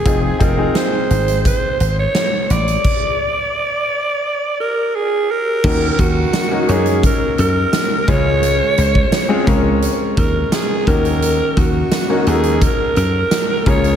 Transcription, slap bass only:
X:1
M:4/4
L:1/16
Q:1/4=86
K:Ebdor
V:1 name="Slap bass" clef=bass
F,,,2 F,,,2 z2 A,,,3 z A,,,2 z2 =A,,,2 | z16 | E,,2 E,,2 z2 G,,3 z G,,2 z2 D,,2- | D,,2 D,,2 z2 D,,3 z E,,2 z2 E,,2- |
E,,2 E,,2 z2 E,,3 z G,,2 z2 D,,2 |]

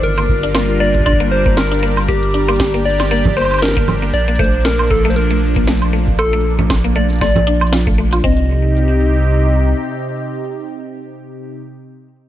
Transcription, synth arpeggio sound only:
X:1
M:4/4
L:1/16
Q:"Swing 16ths" 1/4=117
K:Cdor
V:1 name="Synth arpeggio sound"
z B, z D B, z B, z D B, z B, z D B, z | B, z D B, z B, z D B, z B, z D B, z B, | z B, A, z A, z B, A, z A, z B, A, z A, z | B, A, z A, z B, A, z A, z D z F A, A, F |
C2 z12 z2 | z16 |]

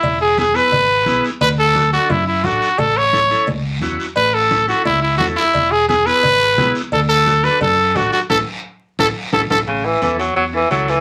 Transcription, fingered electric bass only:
X:1
M:4/4
L:1/8
Q:1/4=174
K:A
V:1 name="Fingered electric bass" clef=bass
E,,,4 G,,,2 B,,, z | D,,4 F,,2 A,,, z | A,,,4 C,,2 E,, z | A,,,4 C,,2 E,, z |
E,,,4 G,,,2 B,,, z | D,,4 F,,2 A,,, z | A,,, z3 A,,, z A,,, A,,, | A,,,2 E,,2 E,,2 C,,2 |]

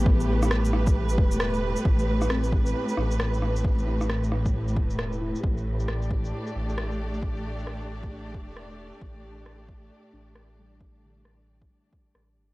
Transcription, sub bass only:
X:1
M:4/4
L:1/8
Q:"Swing 16ths" 1/4=134
K:Gmix
V:1 name="Sub bass" clef=bass
A,,,4- A,,, E,,,2 z | A,,,4 z A,,,3 | A,,,4- A,,, E,,,2 z | A,,,4 z A,,,3 |
A,,,4- A,,, E,,,2 z | A,,,4 z A,,,3 | A,,,4 z2 A,,, G,,, |]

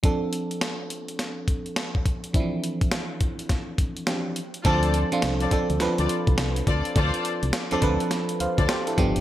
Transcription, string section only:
X:1
M:4/4
L:1/16
Q:"Swing 16ths" 1/4=104
K:Ddor
V:1 name="String section"
z16 | z16 | [FAcd]2 z3 [FAcd] z3 [FAcd] z4 [FAcd] z | [FAcd]2 z3 [FAcd] z4 z [FAcd] z4 |]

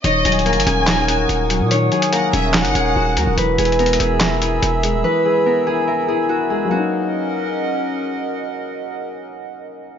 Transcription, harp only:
X:1
M:4/4
L:1/8
Q:1/4=144
K:Ebphr
V:1 name="Harp"
d A B A B G3 | d A B A B A G B | =B ^G _B G B G3 | =B ^G _B G B G _G ^G |
G6 z2 | z8 |]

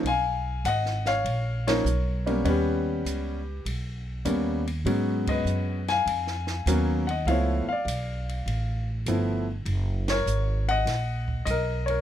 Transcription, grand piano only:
X:1
M:4/4
L:1/8
Q:"Swing" 1/4=100
K:F#
V:1 name="Grand piano"
[eg]2 [df] [ce]2 [Ac]3 | [=GB]4 z4 | z [Bd]2 [eg]4 [df] | [ce] [=de]4 z3 |
z [Ac]2 [df]3 [Ad] [Ac] |]
V:2 name="Grand piano"
z4 z [E,A,CD] z [=G,A,B,C] | [=G,B,C]3 z3 [G,A,B,C] z | [F,G,B,C]3 z3 [F,A,B,C] z | [E,=A,B,=E] z4 z [^E,A,B,=E] z |
z8 |]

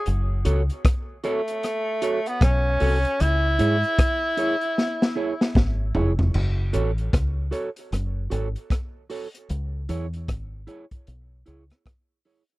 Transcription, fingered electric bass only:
X:1
M:4/4
L:1/16
Q:"Swing 16ths" 1/4=76
K:F#m
V:1 name="Fingered electric bass" clef=bass
F,,,2 C,, z8 z B,,,2 ^B,,, z | C,,2 G,, z8 z G,,,2 ^E,,,2 | F,,,2 A,,,2 C,,2 z2 F,,,2 G,,, z4 z | C,,2 E,,2 G,,,2 z2 B,,,2 C,, z4 z |]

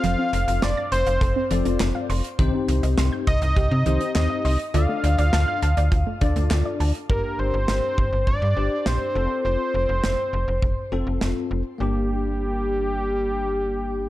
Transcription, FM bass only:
X:1
M:4/4
L:1/16
Q:1/4=102
K:Gm
V:1 name="FM bass" clef=bass
F,,, z F,,, F,,, F,,, z F,,, F,,, F,,, z F,,, F,,, F,,, z F,,, z | C,, z C,, C,, C,, z C,, C,, C,, C, C,, z E,, z C,, z | D,, z D,, D,, D,, z D,, D,, D,, z D,, D,, D,, z D,, z | G,,, z G,,, G,,, G,,, z G,,, G,,, G,,, G,, G,,, z B,,, z F,,, z |
F,,, z F,,, F,,, F,,, z F,,, F,,, F,,, z F,,, F,,, F,,, z F,,, z | G,,,16 |]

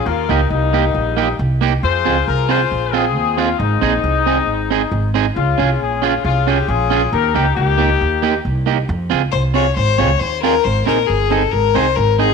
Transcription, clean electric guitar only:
X:1
M:4/4
L:1/16
Q:1/4=136
K:Fm
V:1 name="Clean electric guitar"
z2 [B,EG] z3 [B,EG] z3 [B,EG] z3 [B,EG] z | z2 [CFA] z3 [CFA] z3 [CFA] z3 [CFA] z | z2 [CEA] z3 [CEA] z3 [CEA] z3 [CEA] z | z2 [DFA] z3 [DFA] z3 [DFA] z3 [DFA] z |
z2 [B,EG] z3 [B,EG] z3 [B,EG] z3 [B,EG] z | z2 [CFA] z3 [CFA] z3 [CFA] z3 [CFA] z | z2 [CEA] z3 [CEA] z3 [CEA] z3 [CEA] z |]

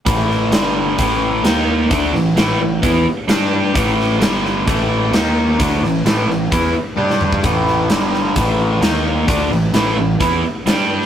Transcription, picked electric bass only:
X:1
M:4/4
L:1/8
Q:1/4=130
K:Gmix
V:1 name="Picked electric bass" clef=bass
A,,,2 G,,,2 A,,,2 ^D,,2 | D,, A,,, A,,, A,,, E,, z G,,2 | A,,,2 G,,,2 A,,,2 ^D,,2 | D,, A,,, A,,, A,,, E,, z G,,2 |
A,,,2 G,,,2 A,,,2 ^D,,2 | D,, A,,, A,,, A,,, E,, z G,,2 |]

